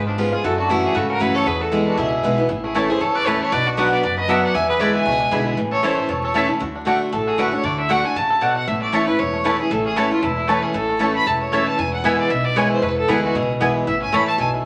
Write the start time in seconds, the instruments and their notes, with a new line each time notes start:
Already playing: upright bass G#1, steel-string acoustic guitar G#2, five-string banjo B3
0.07 fiddle D4, five-string banjo F4, muted resonator guitar played with a steel bar stroke
0.18 steel-string acoustic guitar G#3 B3 F4 G#4, five-string banjo B3, resonator guitar played with a steel bar C#4, fiddle F4
0.32 resonator guitar played with a steel bar F4, five-string banjo F4, steel-string acoustic guitar F4 G#4, fiddle G#4
0.44 upright bass F#2, steel-string acoustic guitar F#2, five-string banjo E4, resonator guitar played with a steel bar F#4, fiddle A4
0.58 five-string banjo A3, resonator guitar played with a steel bar D4, fiddle F#4
0.69 steel-string acoustic guitar E3 A3 C#4 F#4, resonator guitar played with a steel bar C#4, fiddle E4, five-string banjo A4
0.83 resonator guitar played with a steel bar E4, five-string banjo E4, fiddle G#4
0.95 upright bass G#2, steel-string acoustic guitar C#3, five-string banjo A3, resonator guitar played with a steel bar F#4, fiddle A4
1.09 five-string banjo C#4, resonator guitar played with a steel bar F#4, fiddle A#4
1.20 upright bass F#2, steel-string acoustic guitar E3 A3 C#4 F#4, five-string banjo E4, resonator guitar played with a steel bar F#4, fiddle B4
1.35 five-string banjo A3, resonator guitar played with a steel bar A4, fiddle C#5
1.46 steel-string acoustic guitar E2, upright bass E2, five-string banjo B3, resonator guitar played with a steel bar G#4, fiddle B4
1.61 five-string banjo E4, resonator guitar played with a steel bar F#4, fiddle A4
1.72 steel-string acoustic guitar E3 G#3 B3 E4, five-string banjo E4, resonator guitar played with a steel bar E4, fiddle G#4
1.87 five-string banjo B3, resonator guitar played with a steel bar D4, fiddle F#4
1.98 upright bass C#2, steel-string acoustic guitar B2, five-string banjo E4, resonator guitar played with a steel bar E4, fiddle G#4
2.12 five-string banjo E4
2.23 upright bass B1, steel-string acoustic guitar E3 G#3 B3 E4, five-string banjo E4
2.38 five-string banjo B3, steel-string acoustic guitar B3 E4
2.49 upright bass A1, steel-string acoustic guitar A2, five-string banjo E4
2.64 five-string banjo A3, resonator guitar played with a steel bar E4, fiddle G#4
2.75 steel-string acoustic guitar E3 A3 C#4 E4, mandolin A3 E4 C#5 A5, resonator guitar played with a steel bar E4, fiddle A4, five-string banjo A4
2.89 steel-string acoustic guitar C#4 E4, five-string banjo E4, resonator guitar played with a steel bar G#4, fiddle C5
3.01 upright bass E2, steel-string acoustic guitar E2, five-string banjo A3, resonator guitar played with a steel bar A4, fiddle C#5
3.15 five-string banjo C#4, resonator guitar played with a steel bar B4, fiddle D5
3.26 steel-string acoustic guitar E3 A3 C#4 E4, mandolin A3 E4 C#5 A5, resonator guitar played with a steel bar E4, five-string banjo E4, fiddle B4
3.40 five-string banjo A3, resonator guitar played with a steel bar A4, fiddle C#5
3.52 upright bass B1, steel-string acoustic guitar B2, five-string banjo B3, resonator guitar played with a steel bar B4, fiddle D5
3.66 five-string banjo D4, resonator guitar played with a steel bar D4, fiddle F#4
3.77 steel-string acoustic guitar F#3 B3 D4 F#4, mandolin B3 F#4 D5 F#5, resonator guitar played with a steel bar F#4, five-string banjo F#4, fiddle B4
3.92 five-string banjo B3, resonator guitar played with a steel bar B4, fiddle D5
4.03 upright bass F#1, steel-string acoustic guitar F#2, five-string banjo D4, resonator guitar played with a steel bar B4, fiddle D5
4.17 five-string banjo F#4, resonator guitar played with a steel bar B4, fiddle D#5
4.28 steel-string acoustic guitar F#3 B3 D4 F#4, mandolin B3 F#4 D5 F#5, five-string banjo A4, resonator guitar played with a steel bar B4, fiddle E5
4.43 five-string banjo B3, resonator guitar played with a steel bar D5, fiddle F#5
4.54 upright bass E2, steel-string acoustic guitar E2, five-string banjo E4, resonator guitar played with a steel bar E5, fiddle G#5
4.69 five-string banjo B3, resonator guitar played with a steel bar G#4, fiddle B4
4.79 steel-string acoustic guitar D3 G#3 B3 E4, mandolin D4 G#4 E5 B5, five-string banjo E4, resonator guitar played with a steel bar B4, fiddle D5
4.94 five-string banjo E4, resonator guitar played with a steel bar E5, fiddle G#5
5.06 upright bass C#2, steel-string acoustic guitar B2, five-string banjo A3
5.12 five-string banjo B3
5.21 five-string banjo D4
5.31 upright bass B1, steel-string acoustic guitar D3 G#3 B3 E4, mandolin D4 G#4 E5 B5, five-string banjo E4
5.47 five-string banjo B3
5.57 upright bass A1, steel-string acoustic guitar A2, five-string banjo E3
5.71 five-string banjo A3, resonator guitar played with a steel bar A4, fiddle C#5
5.83 steel-string acoustic guitar E3 A3 C#4 E4, mandolin A3 E4 C#5 A5, five-string banjo E4, resonator guitar played with a steel bar A4, fiddle C5
5.98 five-string banjo A4
6.09 upright bass E1, steel-string acoustic guitar E2, five-string banjo A3, resonator guitar played with a steel bar A4, fiddle C#5
6.23 resonator guitar played with a steel bar A4, five-string banjo A4, fiddle C#5
6.34 steel-string acoustic guitar E3 A3 C#4 E4, mandolin A3 E4 C#5 A5, five-string banjo A3, resonator guitar played with a steel bar C#5, fiddle E5
6.49 steel-string acoustic guitar C#4 E4, five-string banjo A4
6.60 upright bass D2, steel-string acoustic guitar D3, five-string banjo F#4
6.76 five-string banjo D4
6.85 steel-string acoustic guitar D3 A3 D4 F#4, mandolin A3 F#4 D5 F#5, five-string banjo A4
7.02 five-string banjo A3
7.12 upright bass A1, steel-string acoustic guitar A2, five-string banjo A4, fiddle A4
7.27 five-string banjo F#4, fiddle G#4
7.38 steel-string acoustic guitar D3 A3 D4 F#4, mandolin A3 F#4 D5 F#5, five-string banjo A4, fiddle B4
7.52 steel-string acoustic guitar D4 F#4, five-string banjo D4, fiddle C#5
7.63 upright bass D2, steel-string acoustic guitar D3, five-string banjo A3, fiddle D5
7.79 five-string banjo D4, fiddle E5
7.89 steel-string acoustic guitar D3 A3 D4 F#4, mandolin A3 F#4 D5 F#5, five-string banjo F#4, fiddle F#5
8.04 five-string banjo A3, steel-string acoustic guitar D4 F#4, fiddle G#5
8.16 upright bass A1, steel-string acoustic guitar C#3, five-string banjo F#4, fiddle A5
8.30 five-string banjo A4
8.41 steel-string acoustic guitar B2, mandolin A3 F#4 D5 F#5, five-string banjo D4
8.56 five-string banjo F#4, fiddle F#5
8.67 upright bass A1, steel-string acoustic guitar A2, five-string banjo E4, fiddle E5
8.81 five-string banjo A3, fiddle D5
8.92 steel-string acoustic guitar E3 A3 C#4 E4, mandolin A3 E4 C#5 A5, five-string banjo A4, fiddle C#5
9.07 five-string banjo A3, steel-string acoustic guitar C#4 E4, fiddle B4
9.19 upright bass E1, steel-string acoustic guitar E2, five-string banjo E4, fiddle C#5
9.34 five-string banjo A3
9.44 steel-string acoustic guitar E3 A3 C#4 E4, mandolin A3 E4 C#5 A5, five-string banjo C#4, fiddle B4
9.59 steel-string acoustic guitar C#4 E4, five-string banjo E4, fiddle G#4
9.70 upright bass A1, steel-string acoustic guitar A2, five-string banjo E4, fiddle A4
9.85 five-string banjo C#4, fiddle G#4
9.96 steel-string acoustic guitar E3 A3 C#4 E4, mandolin A3 E4 C#5 A5, fiddle F#4, five-string banjo A4
10.11 five-string banjo A3, steel-string acoustic guitar C#4 E4, fiddle F4
10.22 upright bass E1, steel-string acoustic guitar E2, fiddle E4, five-string banjo A4
10.37 five-string banjo E4
10.47 steel-string acoustic guitar E3 A3 C#4 E4, mandolin A3 E4 C#5 A5, five-string banjo A4, fiddle B4
10.62 five-string banjo C#4, fiddle G#4
10.74 upright bass A1, steel-string acoustic guitar A2, five-string banjo E4, fiddle A4
10.89 five-string banjo A3
10.99 steel-string acoustic guitar E3 A3 C#4 E4, mandolin A3 E4 C#5 A5, five-string banjo A4
11.15 five-string banjo A3, fiddle B5
11.26 upright bass E1, steel-string acoustic guitar E2, five-string banjo E4, fiddle A5
11.41 five-string banjo A3, fiddle C#5
11.52 steel-string acoustic guitar E3 A3 C#4 E4, mandolin A3 E4 C#5 A5, five-string banjo C#4, fiddle E5
11.67 five-string banjo E4, fiddle A5
11.78 upright bass E1, steel-string acoustic guitar E2, five-string banjo E4, fiddle G#5
11.93 fiddle F#5
12.04 steel-string acoustic guitar E3 G#3 B3 E4, mandolin B3 E4 B4 G#5, five-string banjo E4, fiddle E5
12.19 five-string banjo B3, fiddle D5
12.30 upright bass B1, steel-string acoustic guitar B2, five-string banjo E4, fiddle E5
12.44 five-string banjo B3, fiddle D5
12.56 steel-string acoustic guitar E3 G#3 B3 E4, mandolin B3 E4 B4 G#5, five-string banjo E4, fiddle C#5
12.71 five-string banjo E4, fiddle C5
12.82 upright bass E1, steel-string acoustic guitar E2, five-string banjo A3, fiddle B4
12.88 five-string banjo B3
12.97 fiddle A4
13.08 upright bass D2, steel-string acoustic guitar E3 G#3 B3 E4, mandolin B3 E4 B4 G#5, five-string banjo E4, fiddle G#4
13.23 five-string banjo E4, fiddle F#4
13.35 upright bass C#2, steel-string acoustic guitar B2, five-string banjo E4, fiddle G#4
13.49 five-string banjo B3
13.60 upright bass B1, steel-string acoustic guitar E3 G#3 B3 E4, mandolin B3 E4 B4 G#5, five-string banjo E4
13.76 five-string banjo B3
13.87 upright bass A1, steel-string acoustic guitar A2, five-string banjo E4, fiddle E5
14.02 five-string banjo C#4, fiddle G#5
14.12 upright bass A1, steel-string acoustic guitar E3 A3 C#4 E4, mandolin A3 E4 C#5 A5, five-string banjo A4, fiddle B5
14.27 five-string banjo A3, fiddle A5
14.38 upright bass B1, steel-string acoustic guitar B2, five-string banjo A4, fiddle G#5
14.54 five-string banjo E4